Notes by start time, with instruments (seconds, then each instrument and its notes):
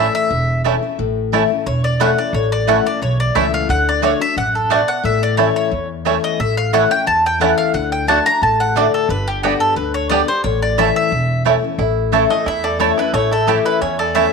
Already playing: steel-string acoustic guitar A2 E3 A3 C#4, mandolin E5
0.00 steel-string acoustic guitar E4
0.15 mandolin E5
0.30 upright bass E1, steel-string acoustic guitar E2
0.64 steel-string acoustic guitar E3 A3 C#4 E4, mandolin A3 E4 C#5 A5, five-string banjo A3 C#4 E4
0.83 steel-string acoustic guitar C#4 E4
0.99 upright bass A1, steel-string acoustic guitar A2
1.32 steel-string acoustic guitar E3 A3 C#4 E4, mandolin A3 E4 C#5 A5, five-string banjo A3 C#4 E4
1.50 steel-string acoustic guitar C#4 E4
1.66 upright bass E1, steel-string acoustic guitar E2, mandolin C#5
1.84 mandolin D5
2.00 steel-string acoustic guitar E3 A3 C#4 E4, mandolin A3 E4 C#5 F#5 A5, five-string banjo A3 C#4 E4
2.18 steel-string acoustic guitar C#4 E4, mandolin D5
2.33 upright bass A1, steel-string acoustic guitar A2, mandolin C#5
2.52 mandolin D5
2.67 steel-string acoustic guitar E3 A3 C#4 E4, mandolin A3 E4 C#5 F#5 A5, five-string banjo A3 C#4 E4
2.85 steel-string acoustic guitar C#4 E4, mandolin D5
3.02 upright bass B1, steel-string acoustic guitar E2, mandolin C#5
3.20 mandolin D5
3.35 upright bass C#2, steel-string acoustic guitar E3 A3 C#4 E4, mandolin A3 E4 C#5 E5 A5, five-string banjo A3 C#4 E4
3.54 mandolin F5
3.69 upright bass D2, steel-string acoustic guitar D3, mandolin F#5
3.89 mandolin D5
4.02 steel-string acoustic guitar D3 A3 D4 F#4, mandolin A3 F#4 C#5 D5 F#5, five-string banjo A3 D4 F#4
4.20 steel-string acoustic guitar D4 F#4, mandolin E5
4.36 upright bass A1, steel-string acoustic guitar F#2, mandolin F#5
4.55 mandolin A4
4.70 steel-string acoustic guitar B2, mandolin A3 F#4 D5 F#5, five-string banjo A3 D4 F#4
4.88 mandolin F#5
5.03 upright bass A1, steel-string acoustic guitar A2, mandolin E5
5.23 mandolin D5
5.37 steel-string acoustic guitar E3 A3 C#4 E4, mandolin A3 E4 C#5 A5, five-string banjo A3 C#4 E4
5.56 mandolin C#5
5.71 steel-string acoustic guitar E2, upright bass E2
6.05 steel-string acoustic guitar E3 A3 C#4 E4, mandolin A3 E4 C#5 A5, five-string banjo A3 C#4 E4
6.24 mandolin D#5
6.40 upright bass A1, steel-string acoustic guitar A2, mandolin E5
6.57 mandolin F5
6.72 steel-string acoustic guitar E3 A3 C#4 E4, mandolin A3 E4 C#5 F#5 A5, five-string banjo A3 C#4 E4
6.90 steel-string acoustic guitar C#4 E4, mandolin G5
7.06 steel-string acoustic guitar E2, upright bass E2, mandolin A5
7.26 mandolin G5
7.40 steel-string acoustic guitar E3 A3 C#4 E4, mandolin A3 E4 C#5 F#5 A5, five-string banjo A3 C#4 E4
7.58 mandolin F5
7.74 upright bass D2, steel-string acoustic guitar D3, mandolin F#5
7.92 mandolin G5
8.07 steel-string acoustic guitar D3 A3 D4 F#4, mandolin A3 F#4 D5 F#5 A5, five-string banjo A3 D4 F#4
8.25 steel-string acoustic guitar D4 F#4, mandolin A#5
8.42 upright bass A1, steel-string acoustic guitar A2, mandolin A5
8.60 mandolin F#5
8.75 steel-string acoustic guitar D3 A3 D4 F#4, mandolin A3 F#4 D5 F#5, five-string banjo A3 D4 F#4
8.94 mandolin A4
9.09 upright bass G1, steel-string acoustic guitar G2, mandolin B4
9.28 mandolin G4
9.43 steel-string acoustic guitar D3 G3 B3 G4, mandolin B3 F#4 G4 D5 G5, five-string banjo B3 D4 G4
9.60 mandolin A4
9.76 upright bass D2, steel-string acoustic guitar D3, mandolin B4
9.94 mandolin C#5
10.10 steel-string acoustic guitar D3 G3 B3 G4, mandolin B3 G4 D5 G5, five-string banjo B3 D4 G4
10.28 steel-string acoustic guitar B3 G4, mandolin C5
10.44 upright bass A1, steel-string acoustic guitar A2, mandolin C#5
10.62 mandolin D5
10.78 steel-string acoustic guitar E3 A3 C#4 E4, mandolin A3 E4 C#5 E5 A5, five-string banjo A3 C#4 E4
10.96 mandolin E5
11.11 upright bass E1, steel-string acoustic guitar E2
11.45 steel-string acoustic guitar E3 A3 C#4 E4, mandolin A3 E4 C#5 A5, five-string banjo A3 C#4 E4
11.62 steel-string acoustic guitar C#4 E4
11.78 upright bass A1, steel-string acoustic guitar A2, five-string banjo E4
12.12 steel-string acoustic guitar E3 A3 C#4 E4, mandolin A3 E4 C#5 A5, five-string banjo A4
12.30 five-string banjo A3, steel-string acoustic guitar C#4 E4, mandolin D#5
12.46 upright bass E2, steel-string acoustic guitar E2, five-string banjo E4, mandolin E5
12.64 five-string banjo A4, mandolin D5
12.79 steel-string acoustic guitar E3 A3 C#4 E4, five-string banjo A3, mandolin A3 E4 C#5 A5
12.98 steel-string acoustic guitar C#4 E4, five-string banjo E4, mandolin B4
13.13 upright bass A1, steel-string acoustic guitar A2, five-string banjo A3, mandolin C#5
13.31 five-string banjo E4, mandolin A4
13.47 steel-string acoustic guitar E3 A3 C#4 E4, mandolin A3 E4 G4 C#5 A5, five-string banjo A4
13.65 five-string banjo E4, mandolin B4
13.81 upright bass E2, steel-string acoustic guitar E2, five-string banjo C#4, mandolin C#5
13.99 five-string banjo A4, mandolin D5
14.14 steel-string acoustic guitar E3 A3 C#4 E4, mandolin A3 E4 C#5 E5 A5, five-string banjo C#4